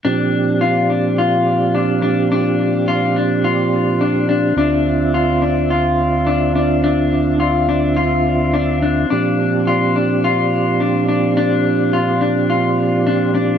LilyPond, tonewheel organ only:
<<
  \new Staff \with { instrumentName = "Tonewheel organ" } { \time 4/4 \key bes \lydian \tempo 4 = 106 c'1~ | c'1~ | c'1~ | c'1~ |
c'1~ | c'1 | }
  \new Staff \with { instrumentName = "Tonewheel organ" } { \time 4/4 \key bes \lydian <bes, f g' d''>1~ | <bes, f g' d''>1 | <d, d f' e''>1~ | <d, d f' e''>1 |
<bes, f g' d''>1~ | <bes, f g' d''>1 | }
>>